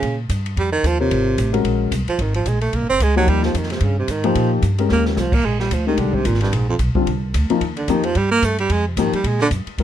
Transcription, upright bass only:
0.03 A#2
0.29 G2
0.57 F2
0.83 D#2
1.11 G#1
1.38 A1
1.64 A#1
1.91 C2
2.07 muted upright bass stroke
2.19 G#1
2.45 A#1
2.73 C2
2.82 G#1
2.90 F#1
3.00 C#2
3.27 D#2
3.54 F2
3.81 G2
4.08 G#2
4.35 A#2
4.62 G2
4.91 D#2
5.17 C2
5.43 A#1
5.71 D2
5.97 C2
6.25 G#1
6.52 A#1
6.79 B1
6.95 muted upright bass stroke
7.07 C2
7.34 D2
7.61 D#2
7.88 F2
8.15 G2
8.42 G2
8.69 F2
8.97 G#2
9.13 muted upright bass stroke
9.24 A#2
9.51 F#2
9.66 muted upright bass stroke
9.78 D#2

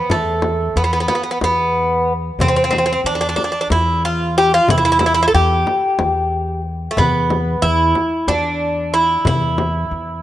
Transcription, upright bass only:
0.10 E2
0.76 E2
1.41 E2
2.39 E2
3.04 E2
3.70 E2
4.69 E2
5.34 E2
6.00 E2
6.97 E2
7.62 E2
8.27 E2
9.26 E2
9.91 E2

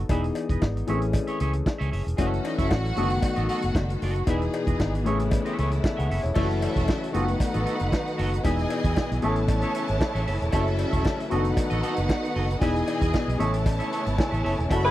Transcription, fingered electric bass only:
0.10 E1
0.50 E1
0.62 G#1
0.88 A1
1.41 C#2
1.81 C#2
1.93 F#1
2.06 E1
2.19 F#1
2.59 F#1
2.71 A1
2.97 F#1
3.38 A1
3.64 F#1
3.75 F#1
4.02 F#1
4.27 E1
4.67 E1
4.80 G#1
5.07 A1
5.59 C#2
5.99 C#2
6.11 F#1
6.24 E1
6.36 F#1
6.77 E1
7.14 F#1
7.55 A1
7.81 F#1
8.19 F#1
8.45 E1
8.84 E2
9.12 B1
9.24 A1
9.90 G#1
10.15 A1
10.28 F#1
10.42 E1
10.53 F#1
10.93 E1
11.32 F#1
11.72 A1
11.98 F#1
12.36 F#1
12.61 E1
13.02 E2
13.28 B1
13.40 A1
14.07 G#1
14.32 A1
14.45 F#1
14.59 E1
14.71 F#1

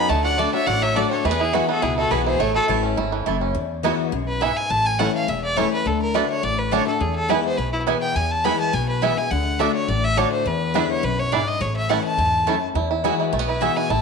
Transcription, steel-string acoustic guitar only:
0.10 D3
0.38 D3 A3 D4 F#4
0.54 D4 F#4
0.67 A2
0.96 D3 A3 D4 F#4
1.25 E2
1.53 E3 G#3 B3 F#4
1.68 B3 F#4
1.82 B2
2.11 E3 G#3 B3 F#4
2.40 A2
2.68 E3 A3 C#4 E4
2.97 G#2
3.26 F#2
3.55 E2
3.83 E3 G#3 B3 F#4
4.12 F#2
4.41 G#2
4.70 A2
4.99 E3 A3 C#4 E4
5.28 E2
5.56 E3 A3 C#4 E4
5.85 D3
6.14 D3 A3 D4 F#4
6.43 A2
6.71 D3 A3 D4 F#4
6.87 D4 F#4
7.01 E2
7.29 E3 G#3 B3 E4
7.58 B2
7.87 E3 G#3 B3 E4
8.16 E2
8.44 E3 G#3 B3 E4
8.73 B2
9.02 E3 G#3 B3 E4
9.17 B3 E4
9.31 D3
9.59 D3 A3 D4 F#4
9.88 A2
10.16 D3 A3 D4 F#4
10.46 E2
10.74 D3 G#3 B3 E4
11.03 F#2
11.32 G#2
11.61 A2
11.89 E3 A3 C#4 E4
12.18 G#2
12.47 F#2
12.75 E2
13.04 E3 G#3 B3 F#4
13.33 B2
13.61 E3 G#3 B3 F#4
13.90 A2

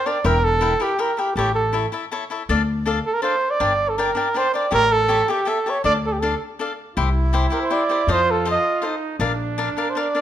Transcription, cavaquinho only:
0.06 D4 A#4 D5 G5
0.24 E4 A#4 E5 G5
0.61 E4 A#4 E5 G5
0.80 E4 A#4 E5 G5
0.99 E4 A#4 E5 G5
1.17 E4 A#4 E5 G5
1.37 E4 A4 C#5 E5
1.73 E4 A4 C#5 E5
1.92 E4 A4 C#5 E5
2.11 E4 A4 C#5 E5
2.30 E4 A4 C#5 E5
2.49 D4 A4 D5 F5
2.86 D4 A4 D5 F5
3.22 D4 A4 D5 F5
3.60 D4 A#4 D5 G5
3.98 D4 A#4 D5 G5
4.15 D4 A#4 D5 G5
4.34 D4 A#4 D5 G5
4.54 D4 A#4 D5 G5
4.71 G4 A4 C#5 E5
5.08 G4 A4 C#5 E5
5.28 G4 A4 C#5 E5
5.45 G4 A4 C#5 E5
5.66 G4 A4 C#5 E5
5.84 D4 A4 D5 F5
6.22 D4 A4 D5 F5
6.59 D4 A4 D5 F5
6.97 E4 G4 C5 E5
7.33 E4 G4 C5 E5
7.50 E4 G4 C5 E5
7.70 E4 G4 C5 E5
7.89 E4 G4 C5 E5
8.08 F4 A4 C5 D#5
8.45 F4 A4 C5 D#5
8.82 F4 A4 C5 D#5
9.20 D4 A#4 D5 F5
9.58 D4 A#4 D5 F5
9.77 D4 A#4 D5 F5
9.95 D4 A#4 D5 F5
10.15 D4 A#4 D5 F5

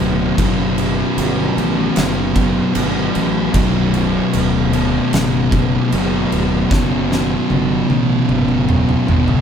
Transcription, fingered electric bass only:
0.00 D1
0.38 F#1
1.17 G1
1.57 A1
1.97 F#1
2.76 G1
3.16 A1
3.54 B0
4.34 D1
5.13 F#1
5.93 F#1
6.32 D1
6.72 F#1
7.50 G1
7.90 A1
8.30 F#1
9.08 G1

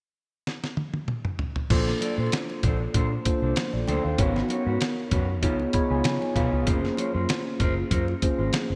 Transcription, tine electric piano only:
1.70 A#3 D4 F4 A4 C5
3.25 A#3 D4 F4 A4 C5
3.56 C5
3.73 D5
3.88 G5
4.04 F5
4.18 B3 D#4 F#4 A#4 C#5
5.42 B3 D#4 F4 G#4 C#5
5.73 B3 D#4 F4 G#4 C#5 B5
5.91 G#5
6.05 G#5
6.35 B3 D#4 F4 G#4 C#5 F5
6.66 A#3 C#4 F4 G#4 C5
8.22 A#3 C#4 F4 G#4 C5

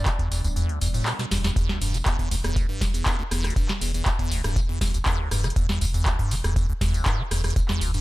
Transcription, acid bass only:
0.06 E3
0.19 E2
0.31 E2
0.44 D2
0.56 E2
0.69 D2
0.81 E2
0.94 A2
1.06 B2
1.19 B2
1.31 E2
1.44 E2
1.56 E2
1.69 D2
1.81 G2
1.94 E3
2.06 E2
2.19 E2
2.31 D2
2.44 E2
2.56 D2
2.69 G2
2.81 E3
2.94 E2
3.19 D2
3.31 E2
3.44 D2
3.56 G2
3.69 E3
3.81 E2
3.94 E2
4.06 D2
4.19 E2
4.31 D2
4.44 G2
4.56 E3
4.69 E2
4.81 E2
4.94 D2
5.06 E2
5.19 D2
5.31 G2
5.44 E3
5.56 E2
5.69 E2
5.81 D2
5.94 E2
6.06 D2
6.19 G2
6.31 E3
6.44 E2
6.56 E2
6.69 D2
6.81 E2
6.94 D2
7.06 G2
7.19 E3
7.31 E2
7.44 E2
7.56 D2
7.69 E2
7.81 D2
7.94 G2

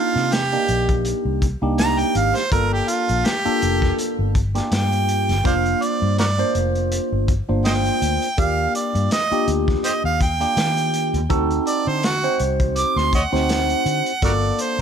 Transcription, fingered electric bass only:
0.16 C3
0.69 A#1
1.25 C2
1.62 C2
2.15 G#1
2.52 G1
3.10 A#1
3.46 muted fingered electric bass stroke
3.63 F1
4.19 G1
4.72 G2
5.29 G1
6.02 G2
6.55 F1
7.12 G1
7.49 G1
8.02 D2
8.38 D#2
8.95 G2
9.31 muted fingered electric bass stroke
9.48 D2
10.04 D#2
10.57 D#3
11.14 D#2
11.30 D2
11.87 D3
12.40 C2
12.96 D2
13.33 D2
13.86 D3
14.22 G1

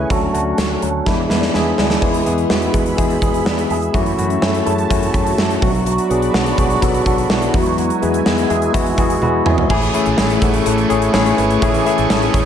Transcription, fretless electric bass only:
0.10 D2
0.34 D2
0.58 D2
0.82 D2
1.07 E2
1.30 E2
1.54 E2
1.78 D2
2.02 E2
2.26 E2
2.50 E2
2.74 E2
2.98 E2
3.22 E2
3.46 E2
3.70 E2
3.94 F#2
4.18 F#2
4.42 F#2
4.66 F#2
4.91 F#2
5.14 F#2
5.38 F#2
5.62 B1
6.10 B1
6.34 B1
6.58 B1
6.82 B1
7.06 B1
7.30 B1
7.54 E2
8.02 E2
8.26 E2
8.50 E2
8.74 E2
8.98 E2
9.22 E2
9.46 E2
9.70 A1
10.06 A1
10.18 A1
10.42 A1
10.66 A1
10.90 A1
11.14 A1
11.38 G#1
11.62 A1
11.98 A1
12.10 A1
12.34 A1

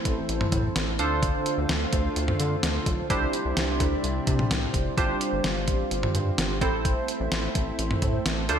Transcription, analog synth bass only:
0.05 A1
0.29 A1
0.52 A2
0.76 A1
0.99 D2
1.58 D2
1.70 D2
1.93 D2
2.17 D2
2.40 D3
2.63 D2
2.86 B1
3.10 C2
3.45 C2
3.57 C2
3.80 D2
4.04 C2
4.27 C3
4.51 C2
4.74 F1
4.97 G1
5.33 G1
5.44 G1
5.68 A1
5.91 G1
6.15 G2
6.38 G1
6.61 A1
7.20 A1
7.32 A1
7.55 A1
7.79 A1
8.02 A2
8.26 A1
8.49 D2

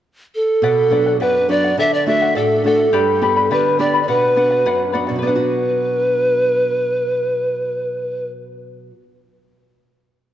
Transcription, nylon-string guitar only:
0.62 B2
0.91 F#3 B3 D4
1.20 F#2
1.49 F#3 B3 D4
1.78 D3
2.06 A3 D4 F#4
2.35 A2
2.64 A3 D4 F#4
2.93 G2
3.21 B3 D4 G4
3.51 D3
3.79 B3 D4 G4
4.08 B2
4.36 B3 D4 F#4
4.66 F#2
4.94 B3 D4 F#4
5.09 B2
5.16 F#3
5.22 B3
5.29 D4
5.36 F#4

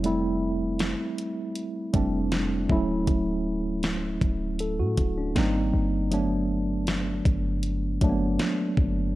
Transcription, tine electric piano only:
0.03 G3 A3 C4 E4
1.93 G3 A3 C4 D4
2.69 F#3 A3 C#4 E4
4.60 A4
4.79 F#4
5.18 D4
5.35 G3 A#3 C4 D#4
6.11 F#3 A3 B3 D4
8.01 F#3 A3 A#3 D4
8.09 B3

